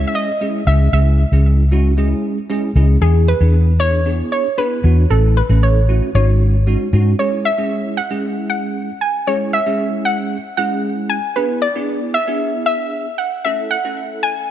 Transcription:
Already playing: tine electric piano G#3 C#4 E4 G#4
0.07 synth pluck E5
0.15 synth pluck D#5
0.41 tine electric piano G#3 C#4 E4 G#4
0.67 fingered electric bass C#2, tine electric piano G#3 C#4 E4 G#4, synth pluck E5
0.93 fingered electric bass C#2, tine electric piano G#3 C#4 E4 G#4, synth pluck E5
1.32 fingered electric bass C#2, tine electric piano G#3 C#4 E4 G#4
1.72 tine electric piano G#3 C#4 E4 F#4
1.97 tine electric piano G#3 C#4 E4 G#4
2.50 tine electric piano G#3 C#4 E4 G#4
2.75 fingered electric bass C#2, tine electric piano G#3 C#4 E4 G#4
3.01 fingered electric bass E2, tine electric piano B3 D4 E4 G#4, synth pluck G#4
3.28 synth pluck B4
3.40 fingered electric bass E2, tine electric piano B3 D4 E4 G#4
3.79 tine electric piano B3 D4 E4 G#4, synth pluck C#5
4.05 tine electric piano B3 D4 E4 G#4
4.32 synth pluck C#5
4.58 tine electric piano B3 D4 E4 G#4, synth pluck B4
4.83 fingered electric bass E2, tine electric piano B3 D4 E4 F#4
5.10 fingered electric bass A1, tine electric piano A3 C#4 E4 A4, synth pluck A4
5.37 synth pluck B4
5.49 fingered electric bass A1, tine electric piano A3 C#4 E4 A4
5.63 synth pluck C#5
5.89 tine electric piano A3 C#4 E4 F#4
6.15 fingered electric bass G#1, tine electric piano G#3 C#4 D#4 F#4, synth pluck C#5
6.67 tine electric piano G#3 C#4 D#4 F#4
6.93 fingered electric bass G#2, tine electric piano G#3 C#4 D#4 F#4
7.19 tine electric piano G#3 C#4 E4 G#4, synth pluck C#5
7.45 synth pluck E5
7.58 tine electric piano G#3 C#4 E4 G#4
7.97 synth pluck F#5
8.10 tine electric piano G#3 C#4 E4 G#4
8.50 synth pluck F#5
9.01 synth pluck G#5
9.27 tine electric piano G#3 C#4 E4 G#4, synth pluck C#5
9.53 synth pluck E5
9.66 tine electric piano G#3 C#4 E4 G#4
10.05 synth pluck F#5
10.57 tine electric piano G#3 C#4 E4 G#4, synth pluck F#5
11.10 synth pluck G#5
11.36 tine electric piano B3 D4 E4 G#4, synth pluck B4
11.62 synth pluck D5
11.75 tine electric piano B3 D4 E4 G#4
12.14 synth pluck E5
12.27 tine electric piano B3 D4 E4 G#4
12.66 synth pluck E5
13.18 synth pluck F#5
13.45 tine electric piano A3 C#4 E4 A4, synth pluck E5
13.71 synth pluck F#5
13.84 tine electric piano A3 C#4 E4 A4
14.23 synth pluck G#5

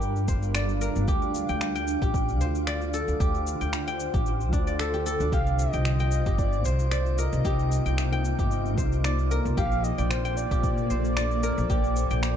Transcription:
Already playing: upright bass G2, ambient pad G3 D4 A#4 F5, synth texture F4 D6, guzheng G4 A#4 C5 D5 G5
0.02 cabasa
0.16 cabasa
0.28 upright bass G1, guzheng C5, kick, cabasa
0.43 cabasa
0.55 guzheng D5, finger snap, cabasa
0.69 cabasa
0.81 guzheng A#4, cabasa
0.96 upright bass G1, cabasa
1.08 upright bass D2, ambient pad D3, guzheng G4, kick, cabasa
1.22 cabasa
1.34 cabasa
1.49 upright bass D2, guzheng G5, cabasa
1.53 ambient pad C5
1.61 finger snap, cabasa
1.75 guzheng G5, cabasa
1.88 cabasa
2.02 upright bass A1, guzheng G4, kick, cabasa
2.14 kick, cabasa
2.29 cabasa
2.40 upright bass D2, guzheng C5, cabasa
2.55 cabasa
2.67 guzheng D5, finger snap, cabasa
2.81 cabasa
2.94 guzheng A4, cabasa
3.08 upright bass D2, cabasa
3.20 upright bass D2, guzheng G4, kick, cabasa
3.35 cabasa
3.47 cabasa
3.61 upright bass D2, guzheng G5, cabasa
3.73 finger snap, cabasa
3.88 guzheng G5, cabasa
4.00 cabasa
4.14 upright bass A1, guzheng G4, kick, cabasa
4.26 cabasa
4.41 cabasa
4.53 upright bass D2, guzheng D4, kick, cabasa
4.67 guzheng D5, cabasa
4.79 guzheng A4, finger snap, cabasa
4.94 guzheng G4, cabasa
5.06 guzheng A4, cabasa
5.20 upright bass D2, guzheng D4, cabasa
5.32 upright bass C2, ambient pad C3, guzheng G4, soft synth lead F5, kick, cabasa
5.47 cabasa
5.58 soft synth lead D#5, cabasa
5.73 upright bass C2, ambient pad A#3, guzheng G5, cabasa
5.85 finger snap, cabasa
5.99 ambient pad D#4, guzheng G5, cabasa
6.11 ambient pad C5, cabasa
6.26 upright bass G1, guzheng G4, kick, cabasa
6.39 soft synth lead D5, kick, cabasa
6.53 cabasa
6.65 upright bass C2, soft synth lead C5, guzheng C5, cabasa
6.79 cabasa
6.91 guzheng D5, finger snap, cabasa
7.06 cabasa
7.18 guzheng A#4, soft synth lead D#5, cabasa
7.33 upright bass C2, cabasa
7.45 upright bass C2, guzheng G4, kick, cabasa
7.59 cabasa
7.72 cabasa
7.86 upright bass C2, guzheng G5, cabasa
7.98 finger snap, cabasa
8.12 guzheng G5, cabasa
8.25 cabasa
8.39 upright bass G1, guzheng G4, kick, cabasa
8.51 cabasa
8.66 cabasa
8.78 upright bass C2, guzheng C5, kick, cabasa
8.92 cabasa
9.04 guzheng D5, finger snap, cabasa
9.19 cabasa
9.31 guzheng A#4, cabasa
9.45 upright bass C2, cabasa
9.57 upright bass A#1, ambient pad A#2, guzheng G4, soft synth lead F5, kick, cabasa
9.72 ambient pad A4, cabasa
9.84 soft synth lead D#5, cabasa
9.98 upright bass A#1, soft synth lead D5, guzheng G5, cabasa
10.10 soft synth lead C5, finger snap, cabasa
10.25 guzheng G5, cabasa
10.37 soft synth lead D5, cabasa
10.51 upright bass A#2, guzheng G4, kick, cabasa
10.63 kick, cabasa
10.78 cabasa
10.90 upright bass A#1, guzheng C5, cabasa
11.05 cabasa
11.17 guzheng D5, finger snap, cabasa
11.31 cabasa
11.43 guzheng A#4, cabasa
11.58 upright bass A#1, cabasa
11.70 upright bass A#1, guzheng G4, kick, cabasa
11.84 cabasa
11.96 cabasa
12.11 upright bass A#1, guzheng G5, cabasa
12.23 finger snap, cabasa

